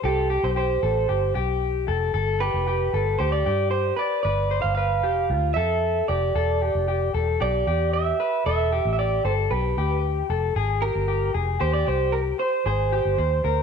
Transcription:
0.04 0.37 C2 loud
0.04 0.45 G4 medium
0.04 0.30 A4 medium
0.30 0.55 G4 medium
0.43 0.77 B1 medium
0.43 0.49 C5 medium
0.56 0.83 G4 medium
0.56 1.32 C5 medium
0.83 1.05 A1 loud
0.83 1.08 A4 medium
1.09 1.32 G1 loud
1.09 1.34 G4 medium
1.35 1.90 B1 medium
1.35 1.85 G4 medium
1.88 2.11 F1 medium
1.88 2.13 A4 medium
2.14 2.48 G1 loud
2.14 2.41 A4 loud
2.40 2.66 G4 medium
2.40 3.18 B4 medium
2.54 2.87 F1 loud
2.67 2.94 G4 medium
2.93 3.16 G1 medium
2.93 3.19 A4 medium
3.19 3.42 D2 loud
3.19 3.45 G4 medium
3.19 3.32 C5 medium
3.32 3.70 D5 medium
3.46 3.91 G2 medium
3.46 3.96 G4 medium
3.71 3.96 C5 loud
3.96 4.22 B4 medium
3.96 4.24 D5 medium
4.23 4.58 G1 loud
4.23 4.51 B4 medium
4.23 4.61 D5 medium
4.51 4.77 C5 medium
4.62 5.03 G1 medium
4.62 4.74 F5 loud
4.75 5.04 B4 medium
4.75 5.53 F5 loud
5.03 5.31 F1 loud
5.03 5.30 G4 medium
5.30 5.52 D2 loud
5.30 5.57 F4 medium
5.54 6.01 F2 medium
5.54 6.06 A4 medium
5.54 6.08 E5 medium
6.08 6.31 F1 medium
6.08 6.35 G4 medium
6.08 7.10 D5 medium
6.35 6.69 E1 loud
6.35 6.62 A4 medium
6.62 6.87 G4 medium
6.75 7.08 F1 medium
6.88 7.14 G4 medium
7.14 7.37 E1 loud
7.14 7.40 A4 medium
7.41 7.63 B1 loud
7.41 7.66 G4 medium
7.41 7.90 D5 medium
7.67 8.12 E2 medium
7.67 8.16 G4 medium
7.93 8.45 E5 loud
8.20 8.46 B4 medium
8.46 8.79 E1 loud
8.46 8.72 A4 medium
8.46 8.92 E5 loud
8.72 8.97 G4 medium
8.85 9.19 A1 loud
8.93 8.98 E5 medium
8.99 9.25 G4 medium
8.99 9.23 D5 medium
9.24 9.47 G1 loud
9.24 9.51 A4 medium
9.24 9.32 C5 medium
9.51 9.73 B1 loud
9.51 9.77 G4 medium
9.51 10.00 B4 medium
9.77 10.22 D2 medium
9.77 10.27 G4 medium
10.30 10.52 F1 medium
10.30 10.56 A4 medium
10.56 10.89 G#1 loud
10.56 10.82 G#4 medium
10.82 11.07 G4 medium
10.82 11.31 A#4 loud
10.95 11.29 G1 loud
11.08 11.34 G4 medium
11.34 11.57 F1 loud
11.34 11.60 G#4 medium
11.60 11.83 D#2 loud
11.60 11.86 G4 medium
11.60 11.73 C5 loud
11.73 11.88 D5 loud
11.87 12.32 C2 medium
11.87 12.36 G4 medium
11.87 12.14 C5 medium
12.12 12.20 A#4 medium
12.39 12.66 C5 medium
12.66 12.99 G#1 loud
12.66 12.92 G#4 medium
12.66 13.63 C5 medium
12.92 13.18 G4 medium
13.05 13.16 G1 medium
13.18 13.40 D#2 loud
13.18 13.44 C5 medium
13.44 13.63 D2 medium
13.44 13.63 A#4 medium

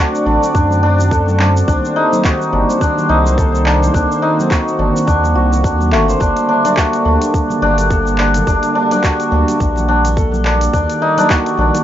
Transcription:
0.00 1.64 D3 medium
0.00 1.64 A3 medium
0.00 0.59 C4 medium
0.00 6.17 C4 medium
0.00 0.26 D4 loud
0.00 1.64 F#4 medium
0.00 2.24 F#4 medium
0.00 1.11 A4 medium
0.00 1.65 D5 medium
0.15 cabasa soft
0.26 0.38 A1 loud
0.26 0.54 D4 medium
0.26 muted conga soft
0.42 muted conga soft
0.42 cabasa medium
0.55 1.63 F#2 medium
0.55 0.82 D4 medium
0.55 kick loud
0.55 cabasa medium
0.70 high conga medium
0.70 low conga medium
0.70 cabasa soft
0.83 1.39 D4 loud
0.99 low conga medium
0.99 cabasa medium
1.11 3.37 A4 medium
1.11 kick loud
1.11 cabasa medium
1.28 high conga medium
1.28 cabasa soft
1.39 1.67 D4 medium
1.39 clap medium
1.39 high conga medium
1.57 cabasa medium
1.68 1.80 C2 medium
1.68 6.17 D#3 medium
1.68 3.92 G3 medium
1.68 10.69 A#3 medium
1.68 2.02 D4 medium
1.68 6.17 C5 medium
1.68 kick loud
1.68 cabasa medium
1.85 cabasa soft
1.96 2.59 D#4 loud
2.13 high conga medium
2.13 cabasa medium
2.24 4.50 F#4 medium
2.24 kick loud
2.24 clap medium
2.24 cabasa medium
2.42 cabasa soft
2.53 2.65 G1 loud
2.53 2.81 D4 medium
2.53 muted conga soft
2.69 muted conga soft
2.69 cabasa medium
2.81 3.15 D4 medium
2.81 kick loud
2.81 cabasa soft
2.97 high conga medium
2.97 low conga medium
2.97 cabasa soft
3.09 3.90 C2 loud
3.09 3.72 D#4 loud
3.26 high conga medium
3.26 cabasa medium
3.38 6.30 A4 medium
3.38 kick loud
3.38 cabasa medium
3.55 cabasa soft
3.66 3.94 D4 medium
3.66 clap medium
3.82 high conga medium
3.82 low conga medium
3.82 cabasa medium
3.94 4.07 C2 medium
3.94 4.28 D4 medium
3.94 6.18 F#4 medium
3.94 kick loud
3.94 cabasa medium
4.12 cabasa soft
4.22 4.85 D#4 medium
4.39 high conga medium
4.39 cabasa medium
4.50 5.35 F#4 medium
4.50 kick loud
4.50 clap medium
4.50 cabasa medium
4.68 cabasa soft
4.79 4.91 G1 loud
4.79 5.07 D4 medium
4.79 muted conga soft
4.96 muted conga soft
4.96 cabasa medium
5.07 5.35 D#2 medium
5.07 5.63 D4 medium
5.07 kick loud
5.07 cabasa soft
5.23 high conga medium
5.23 low conga medium
5.23 cabasa soft
5.35 5.66 C2 medium
5.35 6.77 F#4 medium
5.52 low conga medium
5.52 cabasa medium
5.64 5.94 D#2 medium
5.64 6.20 D4 medium
5.64 kick loud
5.64 cabasa medium
5.80 high conga medium
5.80 cabasa soft
5.92 6.15 G1 medium
5.92 10.36 A3 medium
5.92 clap medium
6.08 8.72 C5 medium
6.08 cabasa medium
6.20 6.33 G1 medium
6.20 10.69 D3 medium
6.20 10.69 G3 medium
6.20 6.48 D4 medium
6.20 kick medium
6.20 cabasa soft
6.37 closed hi-hat soft
6.37 cabasa soft
6.49 6.65 D4 medium
6.65 7.05 D4 medium
6.65 closed hi-hat soft
6.65 high conga medium
6.65 cabasa medium
6.77 9.03 F#4 medium
6.77 kick medium
6.77 clap medium
6.77 cabasa medium
6.93 closed hi-hat soft
6.93 cabasa soft
7.05 7.18 D2 loud
7.05 7.62 D4 medium
7.05 muted conga soft
7.21 closed hi-hat medium
7.21 muted conga soft
7.21 cabasa medium
7.34 kick loud
7.34 cabasa soft
7.50 high conga medium
7.50 low conga medium
7.50 cabasa soft
7.62 8.42 G1 loud
7.62 8.18 D4 loud
7.78 closed hi-hat medium
7.78 high conga medium
7.78 cabasa medium
7.90 10.16 A4 medium
7.90 kick loud
7.90 cabasa soft
8.07 cabasa soft
8.18 8.47 D4 medium
8.18 clap medium
8.34 closed hi-hat medium
8.34 high conga medium
8.34 low conga medium
8.34 cabasa medium
8.47 8.59 G1 medium
8.47 8.75 D4 medium
8.47 10.71 F#4 medium
8.47 kick loud
8.47 cabasa soft
8.63 closed hi-hat soft
8.63 cabasa soft
8.75 8.91 D4 medium
8.91 9.31 D4 medium
8.91 closed hi-hat soft
8.91 high conga medium
8.91 cabasa medium
9.04 11.30 F#4 medium
9.04 kick medium
9.04 clap medium
9.04 cabasa medium
9.20 closed hi-hat soft
9.20 cabasa soft
9.31 9.44 D2 loud
9.31 9.88 D4 medium
9.31 muted conga soft
9.48 closed hi-hat soft
9.48 muted conga soft
9.48 cabasa medium
9.60 10.69 A#1 medium
9.60 kick loud
9.60 cabasa soft
9.76 high conga medium
9.76 low conga medium
9.76 cabasa soft
9.88 10.44 D4 medium
10.05 closed hi-hat medium
10.05 low conga medium
10.05 cabasa medium
10.17 11.84 A4 medium
10.17 kick loud
10.17 cabasa soft
10.32 high conga medium
10.32 cabasa soft
10.45 10.73 D4 medium
10.45 clap medium
10.45 high conga medium
10.61 closed hi-hat medium
10.61 cabasa medium
10.73 10.86 D#2 medium
10.73 11.84 D#3 medium
10.73 11.84 G3 medium
10.73 11.84 A#3 medium
10.73 11.08 D4 medium
10.73 11.84 D5 medium
10.73 kick medium
10.73 cabasa soft
10.90 closed hi-hat soft
10.90 cabasa soft
11.02 11.24 D#4 loud
11.17 11.58 D4 loud
11.17 closed hi-hat medium
11.17 high conga medium
11.17 cabasa medium
11.30 11.84 F#4 medium
11.30 kick loud
11.30 clap medium
11.30 cabasa soft
11.46 closed hi-hat soft
11.46 cabasa soft
11.58 11.71 A#1 loud
11.58 11.84 D4 medium
11.58 muted conga medium
11.74 closed hi-hat medium
11.74 muted conga medium
11.74 cabasa medium

